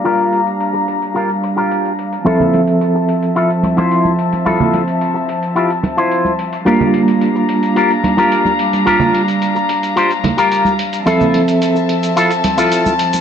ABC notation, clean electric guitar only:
X:1
M:4/4
L:1/16
Q:1/4=109
K:F
V:1 name="Clean electric guitar"
[FGB]2 z6 [FGB] z2 [FGB]3 z2 | [EFA]2 z6 [EFA] z2 [EFc]3 z2 | [EFA]2 z6 [EFG] z2 [EFc]3 z2 | [FGB]2 z6 [FGB] z2 [FGB]3 z2 |
[FGB]2 z6 [FGc] z2 [FGB]3 z2 | [EFA]2 z6 [EFA] z2 [EFA]3 z2 |]